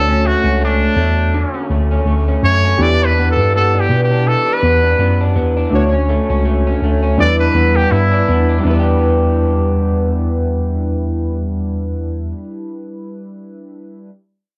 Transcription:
Already playing: tine electric piano D2, synth keys A3 D4 F#4 C#5, trumpet A4
0.08 clean electric guitar C#4
0.25 clean electric guitar A3, trumpet F#4
0.44 tine electric piano C#2, clean electric guitar C#4
0.61 clean electric guitar A3, trumpet D4
0.97 tine electric piano E2, clean electric guitar A3
1.34 clean electric guitar D3
1.54 clean electric guitar C#4
1.70 tine electric piano D2, clean electric guitar A3
1.91 clean electric guitar C#4
2.05 tine electric piano D2, clean electric guitar A3
2.28 clean electric guitar C#4
2.43 tine electric piano F#2, clean electric guitar A3, trumpet C#5
2.65 clean electric guitar C#4
2.77 tine electric piano E2, synth keys D4 E4 G4
2.81 clean electric guitar E3, synth keys B4, trumpet D5
3.02 clean electric guitar D4, trumpet B4
3.19 clean electric guitar B3
3.31 trumpet A4
3.37 tine electric piano G2, clean electric guitar D4
3.56 clean electric guitar B3, trumpet A4
3.75 clean electric guitar D4
3.80 trumpet G4
3.89 tine electric piano B2, clean electric guitar B3
4.04 trumpet G4
4.11 clean electric guitar D4
4.27 clean electric guitar E3, trumpet A4
4.46 clean electric guitar D4
4.53 trumpet B4
4.63 tine electric piano E2, clean electric guitar B3
4.84 clean electric guitar D4
4.99 tine electric piano F#2, clean electric guitar B3
5.21 clean electric guitar D4
5.36 tine electric piano E2, clean electric guitar B3
5.57 clean electric guitar D4
5.70 tine electric piano D2, synth keys A3 D4 F#4
5.75 synth keys C#5
5.93 clean electric guitar C#4
6.09 clean electric guitar A3
6.30 tine electric piano C#2, clean electric guitar C#4
6.45 clean electric guitar A3
6.67 clean electric guitar C#4
6.82 tine electric piano D2, clean electric guitar A3
7.03 clean electric guitar C#4
7.17 tine electric piano E2, clean electric guitar E3, synth keys G3 D4 E4, trumpet D5
7.22 synth keys B4
7.40 clean electric guitar D4, trumpet B4
7.55 tine electric piano E2, clean electric guitar B3
7.76 clean electric guitar D4, trumpet G4
7.91 tine electric piano G2, clean electric guitar B3, trumpet E4
8.11 clean electric guitar D4
8.28 tine electric piano E2, clean electric guitar B3
8.49 clean electric guitar D4
8.59 clean electric guitar E3, synth keys G3
8.63 tine electric piano E2, clean electric guitar B3, synth keys D4 E4
8.70 clean electric guitar D4, synth keys B4
8.79 clean electric guitar G4

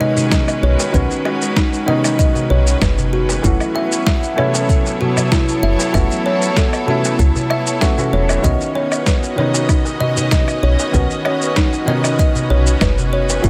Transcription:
Already playing: felt piano D#3 B3 C#4 D#4 F#4, string section D#3 G#3 C#4 F#4 B4
0.00 kalimba D#5, darbuka ka, darbuka dum
0.17 darbuka dum, shaker
0.32 kalimba D#5, kick, snare, shaker
0.48 darbuka ka, low woodblock, shaker
0.63 fm bass B1, kalimba C#5
0.80 darbuka ka, darbuka tek, shaker
0.92 fm bass B1, felt piano D#3 B3 C#4, kalimba B4, kick, shaker
0.96 felt piano F#4
1.11 shaker
1.25 kalimba F#4, darbuka ka, darbuka tek, low woodblock
1.42 shaker
1.57 kalimba D#4, kick, snare, shaker
1.73 darbuka ka, shaker
1.86 felt piano D#3 B3 C#4, kalimba D#5, darbuka dum
1.90 felt piano D#4
2.04 darbuka tek, low woodblock, shaker
2.19 kalimba D#5, kick, shaker
2.35 darbuka dum, shaker
2.50 fm bass B1, kalimba C#5, darbuka ka
2.67 shaker
2.82 fm bass F#1, kalimba B4, kick, snare, low woodblock, shaker
2.98 darbuka dum, shaker
3.13 kalimba F#4, darbuka ka
3.29 darbuka tek, shaker
3.42 fm bass F#1, felt piano E3 A3 C#4, string section F#3, kalimba E4, kick, shaker
3.46 string section B3, felt piano F#4
3.60 low woodblock, shaker
3.75 string section E4, kalimba E5, darbuka ka, darbuka tek
3.92 shaker
4.07 kalimba E5, kick, snare, shaker
4.23 darbuka ka, shaker
4.32 felt piano E3, string section A4 C#5
4.37 felt piano A3 C#4 E4, kalimba C#5, darbuka dum, low woodblock
4.54 darbuka tek, shaker
4.69 kalimba A4, kick, shaker
4.86 darbuka tek, shaker
5.01 kalimba F#4, darbuka ka, darbuka dum
5.17 darbuka dum, low woodblock, shaker
5.32 kalimba E4, kick, snare, shaker
5.49 darbuka ka, shaker
5.63 fm bass F#1, kalimba E5
5.79 darbuka ka, darbuka tek, shaker
5.92 fm bass F#1, felt piano E3 A3 C#4, kalimba E5, kick, low woodblock, shaker
5.96 felt piano F#4
6.11 shaker
6.26 kalimba C#5, darbuka ka, darbuka tek
6.42 shaker
6.57 kalimba A4, kick, snare, shaker
6.73 darbuka ka, low woodblock, shaker
6.86 felt piano E3 A3 C#4, kalimba F#4, darbuka dum
6.90 felt piano E4
7.05 darbuka tek, shaker
7.19 fm bass C#2, kalimba E4, kick, shaker
7.36 darbuka dum, shaker
7.50 kalimba E5, darbuka ka, low woodblock
7.67 darbuka ka, shaker
7.81 felt piano E3 A3 C#4 F#4, kalimba E5, kick, snare, shaker
7.97 felt piano E3 A3 C#4 F#4, darbuka dum, shaker
8.13 fm bass E1, kalimba C#5, darbuka ka
8.29 darbuka tek, low woodblock, shaker
8.42 fm bass B1, felt piano D#3 B3 C#4 F#4, kalimba D#5, kick, shaker
8.53 string section C#4
8.61 shaker
8.75 string section B4, kalimba C#5, darbuka ka, darbuka tek
8.92 low woodblock, shaker
9.01 string section F#4
9.06 kalimba B4, kick, snare, shaker
9.13 string section D#5
9.23 darbuka ka, shaker
9.36 felt piano D#3 B3 C#4, kalimba C#5, darbuka dum
9.40 felt piano D#4
9.54 darbuka tek, shaker
9.69 kalimba D#4, kick, low woodblock, shaker
9.85 darbuka tek, shaker
10.00 kalimba D#5, darbuka ka, darbuka dum
10.17 darbuka dum, shaker
10.31 kalimba D#5, kick, snare, shaker
10.48 darbuka ka, low woodblock, shaker
10.63 fm bass B1, kalimba C#5
10.79 darbuka ka, darbuka tek, shaker
10.92 fm bass B1, felt piano D#3 B3 C#4 F#4, kalimba B4, kick, shaker
11.11 shaker
11.25 kalimba C#5, darbuka ka, darbuka tek, low woodblock
11.42 shaker
11.56 kalimba D#4, kick, snare, shaker
11.73 darbuka ka, shaker
11.86 felt piano D#3 B3 C#4 D#4, kalimba D#5, darbuka dum
12.04 darbuka tek, low woodblock, shaker
12.19 kalimba D#5, kick, shaker
12.35 darbuka dum, shaker
12.50 fm bass B1, kalimba C#5, darbuka ka
12.67 shaker
12.81 fm bass F#1, kalimba B4, kick, snare, low woodblock, shaker
12.98 darbuka dum, shaker
13.13 kalimba C#5, darbuka ka
13.29 darbuka tek, shaker
13.42 fm bass F#1, felt piano E3 A3 C#4, kalimba E4, kick, shaker
13.46 felt piano F#4

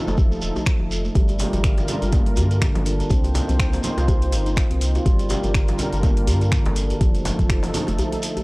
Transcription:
Already playing: analog synth pad F3 D#4 A4
0.07 sub bass F1, handpan A3, djembe slap, shekere
0.18 kick, djembe bass, shekere
0.31 handpan A3, djembe tone, shekere
0.42 sub bass D#1, shekere
0.56 handpan A3, djembe tone, shekere
0.66 finger snap, kick, shekere
0.80 sub bass F1, handpan F3, djembe tone
0.91 shekere
1.05 handpan A3, shekere
1.15 sub bass G1, handpan G3, analog synth pad G3 F4 A#4, kick, closed hi-hat, high conga, djembe bass, shekere
1.28 closed hi-hat, djembe tone, shekere
1.39 handpan G4, open hi-hat, djembe slap, low conga, shekere
1.53 sub bass G1, closed hi-hat, djembe tone, high conga, shekere
1.64 handpan D3, finger snap, kick, closed hi-hat, shekere
1.78 closed hi-hat, djembe slap, djembe tone, high conga, shekere
1.88 handpan D4, open hi-hat, low conga, shekere
2.02 sub bass G1, closed hi-hat, shekere
2.12 handpan A#3, kick, closed hi-hat, djembe tone, low conga, shekere
2.26 closed hi-hat
2.37 sub bass G2, handpan D3, open hi-hat, djembe tone, djembe bass, shekere
2.51 closed hi-hat, shekere
2.61 handpan D3, finger snap, kick, closed hi-hat, djembe tone, shekere
2.75 sub bass G1, closed hi-hat, djembe slap, high conga
2.86 handpan D4, open hi-hat, shekere
3.00 closed hi-hat, djembe tone, shekere
3.10 sub bass C2, analog synth pad A#3 D#4 C5, handpan C4, kick, closed hi-hat, high conga, djembe bass, shekere
3.24 handpan F4, closed hi-hat, djembe tone, shekere
3.35 open hi-hat, djembe slap, low conga, shekere
3.48 sub bass C2, handpan C4, closed hi-hat, djembe tone, high conga, shekere
3.59 finger snap, kick, closed hi-hat, shekere
3.72 handpan C4, open hi-hat, djembe slap, high conga, shekere
3.83 open hi-hat, high conga, djembe tone, low conga, shekere
3.97 sub bass C2, handpan F4, closed hi-hat, djembe slap, shekere
4.08 kick, closed hi-hat, djembe tone, djembe bass, shekere
4.22 handpan F4, closed hi-hat, shekere
4.32 sub bass G1, open hi-hat, djembe tone, shekere
4.46 handpan D#4, closed hi-hat, shekere
4.56 finger snap, kick, closed hi-hat, shekere
4.70 sub bass C2, handpan C4, closed hi-hat, djembe tone
4.81 open hi-hat, shekere
4.95 handpan F4, closed hi-hat, djembe tone, shekere
5.06 sub bass G1, handpan G3, analog synth pad G3 F4 A#4, kick, closed hi-hat, high conga, djembe bass, shekere
5.19 closed hi-hat, djembe tone, shekere
5.29 handpan G4, open hi-hat, djembe slap, low conga, shekere
5.43 sub bass G1, closed hi-hat, high conga, shekere
5.54 handpan D3, finger snap, kick, closed hi-hat, djembe tone, shekere
5.68 closed hi-hat, djembe slap, high conga, shekere
5.78 handpan D4, open hi-hat, djembe tone, low conga, shekere
5.93 sub bass G1, closed hi-hat, shekere
6.03 handpan A#3, kick, closed hi-hat, djembe tone, low conga, shekere
6.17 closed hi-hat
6.27 sub bass G2, handpan D3, open hi-hat, djembe bass, shekere
6.41 closed hi-hat, djembe tone, shekere
6.52 handpan D3, finger snap, kick, closed hi-hat, shekere
6.66 sub bass G1, closed hi-hat, djembe slap, djembe tone, high conga
6.76 handpan D4, open hi-hat, shekere
6.90 closed hi-hat, djembe tone, shekere
7.01 sub bass F1, handpan F3, analog synth pad F3 D#4 A4, kick, closed hi-hat, high conga, djembe bass, shekere
7.14 handpan A3, closed hi-hat, shekere
7.25 open hi-hat, djembe slap, djembe tone, low conga, shekere
7.39 sub bass F1, handpan F3, kick, closed hi-hat, high conga, shekere
7.49 finger snap, kick, closed hi-hat, djembe tone, shekere
7.63 handpan F3, open hi-hat, djembe slap, high conga, shekere
7.74 open hi-hat, djembe tone, high conga, low conga, shekere
7.87 sub bass F1, handpan A3, closed hi-hat, djembe slap, shekere
7.98 closed hi-hat, djembe bass, shekere
8.12 handpan A3, closed hi-hat, djembe tone, shekere
8.22 open hi-hat, shekere
8.36 handpan A3, closed hi-hat, djembe tone, shekere

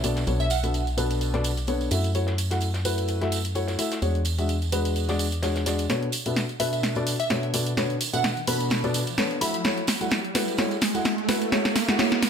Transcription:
Already playing: fm bass B1
0.04 upright piano B2 B3 D4 A4 D5, closed hi-hat, tambourine
0.16 snare, closed hi-hat, tambourine
0.27 fm bass B1, upright piano B2 B3 D4 A4 C#5, closed hi-hat, tambourine
0.40 synth pluck E5, closed hi-hat
0.50 synth pluck F#5, closed hi-hat, tambourine
0.63 upright piano B2 B3 D4 A4 E5, closed hi-hat, tambourine
0.74 closed hi-hat, open hi-hat, tambourine
0.87 closed hi-hat, tambourine
0.97 upright piano B2 B3 D4 A4 B4, closed hi-hat, tambourine
1.11 closed hi-hat, tambourine
1.21 closed hi-hat, tambourine
1.34 upright piano B2 B3 D4 A4 D5, snare, closed hi-hat
1.44 closed hi-hat, tambourine
1.57 closed hi-hat, tambourine
1.67 upright piano B3 D4 A4 C#5, closed hi-hat, tambourine
1.81 closed hi-hat, tambourine
1.91 fm bass F#2, upright piano A3 E4 F#4 E5, closed hi-hat, tambourine
2.04 closed hi-hat, tambourine
2.15 upright piano A3 E4 F#4 C#5, closed hi-hat, tambourine
2.27 snare, closed hi-hat
2.38 closed hi-hat, tambourine
2.51 upright piano A3 E4 F#4 F#5, snare, closed hi-hat, tambourine
2.61 closed hi-hat, tambourine
2.74 snare, closed hi-hat, tambourine
2.85 upright piano A3 E4 F#4 B4, closed hi-hat, tambourine
2.98 closed hi-hat, tambourine
3.08 closed hi-hat, tambourine
3.21 upright piano A3 E4 F#4 E5, snare, closed hi-hat
3.32 closed hi-hat, tambourine
3.45 closed hi-hat, tambourine
3.55 upright piano A3 E4 F#4 C#5, closed hi-hat, tambourine
3.68 snare, closed hi-hat, tambourine
3.79 upright piano A3 E4 F#4 E5, closed hi-hat, tambourine
3.92 snare, closed hi-hat, tambourine
4.02 fm bass E2, upright piano G#3 D4 F#4 C#5, closed hi-hat, tambourine
4.15 closed hi-hat
4.25 closed hi-hat, tambourine
4.38 upright piano G#3 D4 F#4 E5, closed hi-hat, tambourine
4.49 closed hi-hat, open hi-hat, tambourine
4.62 closed hi-hat, tambourine
4.72 upright piano G#3 D4 F#4 B4, closed hi-hat, tambourine
4.85 closed hi-hat, tambourine
4.96 closed hi-hat, tambourine
5.08 upright piano G#3 D4 F#4 D5, snare, closed hi-hat, tambourine
5.19 closed hi-hat, tambourine
5.32 closed hi-hat, tambourine
5.43 upright piano G#3 D4 F#4 C#5, snare, closed hi-hat, tambourine
5.56 snare, closed hi-hat, tambourine
5.66 upright piano G#3 D4 F#4 D5, snare, closed hi-hat, tambourine
5.78 closed hi-hat, tambourine
5.90 upright piano B2 B3 D4 A4 C#5, snare, closed hi-hat, tambourine, riser
6.03 closed hi-hat
6.12 open hi-hat, tambourine
6.26 upright piano B2 B3 D4 A4 E5, closed hi-hat, tambourine
6.36 snare, closed hi-hat, tambourine
6.49 closed hi-hat
6.60 upright piano B2 B3 D4 A4 B4, synth pluck E5, open hi-hat, tambourine
6.73 synth pluck E5, closed hi-hat, tambourine
6.83 snare, closed hi-hat, tambourine
6.95 upright piano B2 B3 D4 A4 D5, closed hi-hat, tambourine
7.07 open hi-hat, tambourine
7.20 synth pluck E5, closed hi-hat, tambourine
7.30 upright piano B2 B3 D4 A4 C#5, snare, closed hi-hat, tambourine
7.43 closed hi-hat
7.54 upright piano B2 B3 D4 A4 D5, open hi-hat, tambourine
7.67 closed hi-hat, tambourine
7.77 upright piano B2 B3 D4 A4 C#5, snare, closed hi-hat, tambourine
7.90 closed hi-hat
8.01 open hi-hat, tambourine
8.13 upright piano B2 B3 D4 A4 E5, synth pluck F#5, closed hi-hat, tambourine
8.24 snare, closed hi-hat, tambourine
8.37 closed hi-hat
8.47 upright piano B2 B3 D4 A4 B4, synth pluck B5, open hi-hat, tambourine
8.60 closed hi-hat, tambourine
8.70 snare, closed hi-hat, tambourine
8.84 upright piano B2 B3 D4 A4 D5, closed hi-hat, tambourine
8.94 open hi-hat, tambourine
9.07 closed hi-hat, tambourine
9.18 upright piano B3 D4 A4 C#5, snare, closed hi-hat, tambourine
9.31 closed hi-hat
9.41 upright piano A3 E4 F#4 E5, synth pluck B5, open hi-hat, tambourine
9.54 closed hi-hat, tambourine
9.64 upright piano A3 E4 F#4 C#5, snare, closed hi-hat, tambourine
9.77 closed hi-hat
9.87 snare, open hi-hat, tambourine
10.01 upright piano A3 E4 F#4 F#5, closed hi-hat, tambourine
10.10 snare, closed hi-hat, tambourine
10.25 closed hi-hat
10.35 upright piano A3 E4 F#4 B4, snare, open hi-hat, tambourine
10.48 closed hi-hat, tambourine
10.58 upright piano A3 E4 F#4 C#5, snare, closed hi-hat, tambourine
10.71 closed hi-hat, tambourine
10.81 snare, open hi-hat, tambourine
10.94 upright piano A3 E4 F#4 F#5, closed hi-hat, tambourine
11.05 snare, closed hi-hat, tambourine
11.18 closed hi-hat
11.28 upright piano A3 E4 F#4 B4, snare, open hi-hat, tambourine
11.41 closed hi-hat, tambourine
11.52 upright piano G#3 E4 F#4 C#5, snare, closed hi-hat, tambourine
11.65 snare, closed hi-hat, tambourine
11.76 snare, open hi-hat, tambourine
11.88 upright piano G#3 E4 F#4 F#5, snare, closed hi-hat, tambourine
11.99 upright piano G#3 E4 F#4 C#5, snare, closed hi-hat, tambourine
12.12 snare, closed hi-hat
12.22 snare, open hi-hat, tambourine

